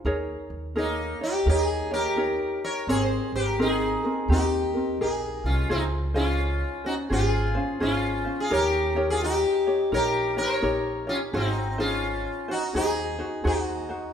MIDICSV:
0, 0, Header, 1, 4, 480
1, 0, Start_track
1, 0, Key_signature, -4, "major"
1, 0, Tempo, 705053
1, 35, Time_signature, 4, 2, 24, 8
1, 3879, Key_signature, -5, "major"
1, 9620, End_track
2, 0, Start_track
2, 0, Title_t, "Ukulele"
2, 0, Program_c, 0, 24
2, 37, Note_on_c, 0, 70, 70
2, 38, Note_on_c, 0, 63, 72
2, 42, Note_on_c, 0, 68, 77
2, 44, Note_on_c, 0, 73, 81
2, 512, Note_off_c, 0, 68, 0
2, 512, Note_off_c, 0, 70, 0
2, 514, Note_on_c, 0, 70, 62
2, 517, Note_off_c, 0, 63, 0
2, 520, Note_on_c, 0, 63, 67
2, 520, Note_on_c, 0, 68, 66
2, 521, Note_off_c, 0, 73, 0
2, 524, Note_on_c, 0, 73, 72
2, 816, Note_off_c, 0, 73, 0
2, 821, Note_off_c, 0, 70, 0
2, 824, Note_off_c, 0, 63, 0
2, 824, Note_off_c, 0, 68, 0
2, 825, Note_on_c, 0, 73, 52
2, 837, Note_on_c, 0, 63, 42
2, 997, Note_off_c, 0, 63, 0
2, 997, Note_off_c, 0, 73, 0
2, 999, Note_on_c, 0, 70, 60
2, 1005, Note_on_c, 0, 63, 60
2, 1014, Note_on_c, 0, 73, 62
2, 1292, Note_off_c, 0, 73, 0
2, 1300, Note_on_c, 0, 73, 51
2, 1304, Note_off_c, 0, 70, 0
2, 1307, Note_off_c, 0, 63, 0
2, 1311, Note_on_c, 0, 67, 45
2, 1317, Note_on_c, 0, 63, 39
2, 1475, Note_off_c, 0, 73, 0
2, 1476, Note_off_c, 0, 63, 0
2, 1478, Note_off_c, 0, 67, 0
2, 1479, Note_on_c, 0, 70, 65
2, 1484, Note_on_c, 0, 63, 72
2, 1486, Note_on_c, 0, 67, 68
2, 1489, Note_on_c, 0, 73, 70
2, 1961, Note_off_c, 0, 63, 0
2, 1963, Note_off_c, 0, 73, 0
2, 1964, Note_on_c, 0, 60, 72
2, 1965, Note_off_c, 0, 70, 0
2, 1968, Note_on_c, 0, 70, 74
2, 2441, Note_off_c, 0, 70, 0
2, 2442, Note_off_c, 0, 60, 0
2, 2445, Note_off_c, 0, 67, 0
2, 2445, Note_on_c, 0, 60, 65
2, 2448, Note_on_c, 0, 68, 66
2, 2449, Note_on_c, 0, 70, 74
2, 2739, Note_off_c, 0, 70, 0
2, 2745, Note_off_c, 0, 68, 0
2, 2747, Note_on_c, 0, 70, 47
2, 2748, Note_off_c, 0, 60, 0
2, 2753, Note_on_c, 0, 68, 48
2, 2761, Note_on_c, 0, 60, 43
2, 2919, Note_off_c, 0, 70, 0
2, 2922, Note_off_c, 0, 60, 0
2, 2922, Note_off_c, 0, 68, 0
2, 2924, Note_on_c, 0, 67, 58
2, 2930, Note_on_c, 0, 60, 62
2, 2940, Note_on_c, 0, 70, 64
2, 3219, Note_off_c, 0, 70, 0
2, 3224, Note_off_c, 0, 67, 0
2, 3227, Note_on_c, 0, 70, 48
2, 3231, Note_off_c, 0, 60, 0
2, 3243, Note_on_c, 0, 60, 38
2, 3399, Note_off_c, 0, 70, 0
2, 3407, Note_off_c, 0, 60, 0
2, 3410, Note_on_c, 0, 68, 68
2, 3410, Note_on_c, 0, 70, 65
2, 3877, Note_off_c, 0, 68, 0
2, 3877, Note_on_c, 0, 68, 71
2, 3883, Note_off_c, 0, 70, 0
2, 3883, Note_on_c, 0, 65, 78
2, 3886, Note_on_c, 0, 72, 73
2, 4174, Note_off_c, 0, 72, 0
2, 4178, Note_off_c, 0, 65, 0
2, 4181, Note_off_c, 0, 68, 0
2, 4182, Note_on_c, 0, 72, 62
2, 4186, Note_on_c, 0, 65, 55
2, 4189, Note_on_c, 0, 68, 57
2, 4190, Note_on_c, 0, 61, 54
2, 4650, Note_off_c, 0, 72, 0
2, 4656, Note_off_c, 0, 68, 0
2, 4658, Note_on_c, 0, 72, 48
2, 4666, Note_off_c, 0, 65, 0
2, 4668, Note_off_c, 0, 61, 0
2, 4671, Note_on_c, 0, 61, 42
2, 4828, Note_off_c, 0, 72, 0
2, 4829, Note_off_c, 0, 61, 0
2, 4831, Note_on_c, 0, 68, 60
2, 4837, Note_on_c, 0, 61, 65
2, 4843, Note_on_c, 0, 65, 68
2, 4845, Note_on_c, 0, 72, 64
2, 5131, Note_off_c, 0, 72, 0
2, 5139, Note_on_c, 0, 72, 51
2, 5141, Note_off_c, 0, 65, 0
2, 5142, Note_off_c, 0, 68, 0
2, 5145, Note_off_c, 0, 61, 0
2, 5150, Note_on_c, 0, 65, 44
2, 5156, Note_on_c, 0, 61, 42
2, 5307, Note_off_c, 0, 61, 0
2, 5309, Note_off_c, 0, 65, 0
2, 5312, Note_off_c, 0, 72, 0
2, 5312, Note_on_c, 0, 68, 70
2, 5315, Note_on_c, 0, 61, 64
2, 5317, Note_on_c, 0, 65, 73
2, 5320, Note_on_c, 0, 72, 74
2, 5605, Note_off_c, 0, 72, 0
2, 5613, Note_off_c, 0, 65, 0
2, 5613, Note_on_c, 0, 72, 49
2, 5619, Note_off_c, 0, 61, 0
2, 5621, Note_on_c, 0, 65, 41
2, 5623, Note_off_c, 0, 68, 0
2, 5627, Note_on_c, 0, 61, 40
2, 5791, Note_off_c, 0, 61, 0
2, 5791, Note_on_c, 0, 70, 75
2, 5793, Note_off_c, 0, 65, 0
2, 5793, Note_off_c, 0, 72, 0
2, 5794, Note_on_c, 0, 63, 66
2, 5795, Note_on_c, 0, 67, 75
2, 5800, Note_on_c, 0, 73, 87
2, 6094, Note_off_c, 0, 73, 0
2, 6097, Note_off_c, 0, 63, 0
2, 6099, Note_off_c, 0, 67, 0
2, 6102, Note_off_c, 0, 70, 0
2, 6102, Note_on_c, 0, 73, 71
2, 6105, Note_on_c, 0, 63, 59
2, 6107, Note_on_c, 0, 67, 58
2, 6110, Note_on_c, 0, 70, 49
2, 6574, Note_off_c, 0, 73, 0
2, 6579, Note_off_c, 0, 67, 0
2, 6582, Note_on_c, 0, 73, 51
2, 6588, Note_off_c, 0, 70, 0
2, 6588, Note_on_c, 0, 67, 50
2, 6591, Note_off_c, 0, 63, 0
2, 6594, Note_on_c, 0, 63, 42
2, 6750, Note_off_c, 0, 63, 0
2, 6754, Note_on_c, 0, 70, 62
2, 6756, Note_off_c, 0, 67, 0
2, 6758, Note_off_c, 0, 73, 0
2, 6758, Note_on_c, 0, 63, 61
2, 6764, Note_on_c, 0, 67, 66
2, 6768, Note_on_c, 0, 73, 77
2, 7050, Note_off_c, 0, 73, 0
2, 7056, Note_off_c, 0, 67, 0
2, 7058, Note_on_c, 0, 73, 56
2, 7062, Note_off_c, 0, 63, 0
2, 7063, Note_off_c, 0, 70, 0
2, 7064, Note_on_c, 0, 67, 47
2, 7070, Note_on_c, 0, 63, 42
2, 7224, Note_off_c, 0, 63, 0
2, 7230, Note_off_c, 0, 67, 0
2, 7230, Note_on_c, 0, 70, 68
2, 7232, Note_off_c, 0, 73, 0
2, 7232, Note_on_c, 0, 63, 83
2, 7238, Note_on_c, 0, 67, 78
2, 7240, Note_on_c, 0, 73, 75
2, 7528, Note_off_c, 0, 73, 0
2, 7536, Note_off_c, 0, 67, 0
2, 7536, Note_on_c, 0, 73, 51
2, 7541, Note_off_c, 0, 70, 0
2, 7542, Note_off_c, 0, 63, 0
2, 7544, Note_on_c, 0, 67, 46
2, 7552, Note_on_c, 0, 63, 41
2, 7710, Note_off_c, 0, 63, 0
2, 7714, Note_off_c, 0, 73, 0
2, 7716, Note_on_c, 0, 68, 69
2, 7718, Note_off_c, 0, 67, 0
2, 7718, Note_on_c, 0, 63, 65
2, 7720, Note_on_c, 0, 66, 73
2, 7722, Note_on_c, 0, 72, 83
2, 8014, Note_off_c, 0, 72, 0
2, 8019, Note_off_c, 0, 63, 0
2, 8022, Note_off_c, 0, 68, 0
2, 8022, Note_on_c, 0, 72, 63
2, 8026, Note_off_c, 0, 66, 0
2, 8027, Note_on_c, 0, 63, 58
2, 8030, Note_on_c, 0, 68, 52
2, 8495, Note_off_c, 0, 72, 0
2, 8498, Note_on_c, 0, 72, 54
2, 8503, Note_off_c, 0, 68, 0
2, 8505, Note_off_c, 0, 63, 0
2, 8506, Note_on_c, 0, 66, 49
2, 8513, Note_on_c, 0, 63, 40
2, 8671, Note_off_c, 0, 63, 0
2, 8674, Note_off_c, 0, 72, 0
2, 8675, Note_on_c, 0, 68, 57
2, 8676, Note_off_c, 0, 66, 0
2, 8680, Note_on_c, 0, 63, 65
2, 8684, Note_on_c, 0, 66, 62
2, 8688, Note_on_c, 0, 72, 70
2, 8969, Note_off_c, 0, 72, 0
2, 8976, Note_off_c, 0, 66, 0
2, 8977, Note_on_c, 0, 72, 49
2, 8980, Note_off_c, 0, 63, 0
2, 8982, Note_off_c, 0, 68, 0
2, 8984, Note_on_c, 0, 66, 51
2, 8989, Note_on_c, 0, 63, 42
2, 9145, Note_off_c, 0, 63, 0
2, 9147, Note_off_c, 0, 66, 0
2, 9149, Note_on_c, 0, 68, 69
2, 9152, Note_off_c, 0, 72, 0
2, 9153, Note_on_c, 0, 63, 73
2, 9155, Note_on_c, 0, 66, 80
2, 9160, Note_on_c, 0, 72, 79
2, 9448, Note_off_c, 0, 72, 0
2, 9457, Note_off_c, 0, 66, 0
2, 9457, Note_on_c, 0, 72, 48
2, 9459, Note_off_c, 0, 68, 0
2, 9460, Note_off_c, 0, 63, 0
2, 9465, Note_on_c, 0, 66, 51
2, 9471, Note_on_c, 0, 63, 39
2, 9620, Note_off_c, 0, 63, 0
2, 9620, Note_off_c, 0, 66, 0
2, 9620, Note_off_c, 0, 72, 0
2, 9620, End_track
3, 0, Start_track
3, 0, Title_t, "Sitar"
3, 0, Program_c, 1, 104
3, 531, Note_on_c, 1, 58, 62
3, 535, Note_on_c, 1, 63, 80
3, 809, Note_off_c, 1, 58, 0
3, 831, Note_off_c, 1, 63, 0
3, 840, Note_on_c, 1, 63, 62
3, 841, Note_on_c, 1, 67, 88
3, 992, Note_off_c, 1, 63, 0
3, 1010, Note_off_c, 1, 67, 0
3, 1017, Note_on_c, 1, 67, 93
3, 1021, Note_on_c, 1, 63, 74
3, 1098, Note_off_c, 1, 67, 0
3, 1098, Note_on_c, 1, 68, 93
3, 1294, Note_off_c, 1, 63, 0
3, 1315, Note_off_c, 1, 68, 0
3, 1318, Note_on_c, 1, 67, 72
3, 1318, Note_on_c, 1, 70, 88
3, 1762, Note_off_c, 1, 70, 0
3, 1764, Note_off_c, 1, 67, 0
3, 1800, Note_on_c, 1, 70, 69
3, 1800, Note_on_c, 1, 73, 88
3, 1954, Note_off_c, 1, 70, 0
3, 1967, Note_off_c, 1, 73, 0
3, 1970, Note_on_c, 1, 73, 97
3, 1973, Note_on_c, 1, 68, 74
3, 2051, Note_off_c, 1, 73, 0
3, 2051, Note_on_c, 1, 72, 97
3, 2250, Note_off_c, 1, 68, 0
3, 2279, Note_off_c, 1, 72, 0
3, 2284, Note_on_c, 1, 70, 84
3, 2289, Note_on_c, 1, 67, 68
3, 2438, Note_off_c, 1, 67, 0
3, 2452, Note_off_c, 1, 70, 0
3, 2463, Note_on_c, 1, 68, 82
3, 2467, Note_on_c, 1, 63, 65
3, 2905, Note_off_c, 1, 63, 0
3, 2941, Note_on_c, 1, 67, 85
3, 2944, Note_off_c, 1, 68, 0
3, 2948, Note_on_c, 1, 63, 69
3, 3383, Note_off_c, 1, 67, 0
3, 3386, Note_off_c, 1, 63, 0
3, 3416, Note_on_c, 1, 68, 68
3, 3424, Note_on_c, 1, 63, 51
3, 3716, Note_on_c, 1, 65, 69
3, 3722, Note_on_c, 1, 61, 52
3, 3774, Note_off_c, 1, 68, 0
3, 3778, Note_off_c, 1, 63, 0
3, 3872, Note_off_c, 1, 65, 0
3, 3876, Note_off_c, 1, 61, 0
3, 3890, Note_on_c, 1, 63, 86
3, 3895, Note_on_c, 1, 60, 64
3, 3971, Note_off_c, 1, 63, 0
3, 3975, Note_off_c, 1, 60, 0
3, 4192, Note_on_c, 1, 65, 79
3, 4202, Note_on_c, 1, 61, 62
3, 4647, Note_off_c, 1, 61, 0
3, 4668, Note_off_c, 1, 65, 0
3, 4670, Note_on_c, 1, 66, 81
3, 4680, Note_on_c, 1, 63, 60
3, 4717, Note_off_c, 1, 66, 0
3, 4725, Note_off_c, 1, 63, 0
3, 4850, Note_on_c, 1, 68, 91
3, 4858, Note_on_c, 1, 65, 69
3, 5298, Note_off_c, 1, 68, 0
3, 5302, Note_off_c, 1, 65, 0
3, 5327, Note_on_c, 1, 65, 82
3, 5334, Note_on_c, 1, 61, 62
3, 5693, Note_off_c, 1, 61, 0
3, 5721, Note_on_c, 1, 68, 78
3, 5728, Note_off_c, 1, 65, 0
3, 5736, Note_on_c, 1, 65, 63
3, 5806, Note_off_c, 1, 65, 0
3, 5806, Note_off_c, 1, 68, 0
3, 5810, Note_on_c, 1, 70, 91
3, 5822, Note_on_c, 1, 67, 77
3, 6178, Note_off_c, 1, 67, 0
3, 6195, Note_off_c, 1, 70, 0
3, 6197, Note_on_c, 1, 68, 94
3, 6211, Note_on_c, 1, 65, 70
3, 6283, Note_off_c, 1, 65, 0
3, 6284, Note_off_c, 1, 68, 0
3, 6287, Note_on_c, 1, 67, 90
3, 6296, Note_on_c, 1, 63, 74
3, 6741, Note_off_c, 1, 63, 0
3, 6765, Note_off_c, 1, 67, 0
3, 6768, Note_on_c, 1, 70, 101
3, 6779, Note_on_c, 1, 67, 77
3, 7055, Note_off_c, 1, 67, 0
3, 7064, Note_off_c, 1, 70, 0
3, 7067, Note_on_c, 1, 73, 102
3, 7084, Note_on_c, 1, 70, 80
3, 7527, Note_off_c, 1, 70, 0
3, 7551, Note_on_c, 1, 65, 90
3, 7561, Note_off_c, 1, 73, 0
3, 7564, Note_on_c, 1, 61, 66
3, 7597, Note_off_c, 1, 65, 0
3, 7608, Note_off_c, 1, 61, 0
3, 7723, Note_on_c, 1, 63, 88
3, 7739, Note_on_c, 1, 60, 71
3, 8006, Note_off_c, 1, 63, 0
3, 8015, Note_off_c, 1, 60, 0
3, 8033, Note_on_c, 1, 65, 90
3, 8045, Note_on_c, 1, 61, 73
3, 8487, Note_off_c, 1, 61, 0
3, 8519, Note_on_c, 1, 66, 85
3, 8523, Note_off_c, 1, 65, 0
3, 8530, Note_on_c, 1, 63, 69
3, 8679, Note_off_c, 1, 63, 0
3, 8684, Note_off_c, 1, 66, 0
3, 8687, Note_on_c, 1, 68, 97
3, 8698, Note_on_c, 1, 63, 76
3, 9140, Note_off_c, 1, 63, 0
3, 9168, Note_off_c, 1, 68, 0
3, 9171, Note_on_c, 1, 66, 85
3, 9177, Note_on_c, 1, 63, 66
3, 9616, Note_off_c, 1, 66, 0
3, 9619, Note_off_c, 1, 63, 0
3, 9620, End_track
4, 0, Start_track
4, 0, Title_t, "Upright bass"
4, 0, Program_c, 2, 32
4, 32, Note_on_c, 2, 39, 87
4, 232, Note_off_c, 2, 39, 0
4, 341, Note_on_c, 2, 39, 77
4, 766, Note_off_c, 2, 39, 0
4, 993, Note_on_c, 2, 39, 86
4, 1618, Note_off_c, 2, 39, 0
4, 1956, Note_on_c, 2, 32, 85
4, 2156, Note_off_c, 2, 32, 0
4, 2261, Note_on_c, 2, 32, 76
4, 2687, Note_off_c, 2, 32, 0
4, 2917, Note_on_c, 2, 39, 91
4, 3230, Note_off_c, 2, 39, 0
4, 3396, Note_on_c, 2, 34, 68
4, 3677, Note_off_c, 2, 34, 0
4, 3704, Note_on_c, 2, 36, 67
4, 3861, Note_off_c, 2, 36, 0
4, 3880, Note_on_c, 2, 37, 88
4, 4504, Note_off_c, 2, 37, 0
4, 4837, Note_on_c, 2, 32, 90
4, 5150, Note_off_c, 2, 32, 0
4, 5315, Note_on_c, 2, 32, 75
4, 5629, Note_off_c, 2, 32, 0
4, 5796, Note_on_c, 2, 39, 91
4, 6421, Note_off_c, 2, 39, 0
4, 6754, Note_on_c, 2, 34, 90
4, 7068, Note_off_c, 2, 34, 0
4, 7236, Note_on_c, 2, 34, 82
4, 7549, Note_off_c, 2, 34, 0
4, 7716, Note_on_c, 2, 32, 89
4, 8340, Note_off_c, 2, 32, 0
4, 8678, Note_on_c, 2, 39, 85
4, 8989, Note_off_c, 2, 39, 0
4, 9155, Note_on_c, 2, 39, 83
4, 9467, Note_off_c, 2, 39, 0
4, 9620, End_track
0, 0, End_of_file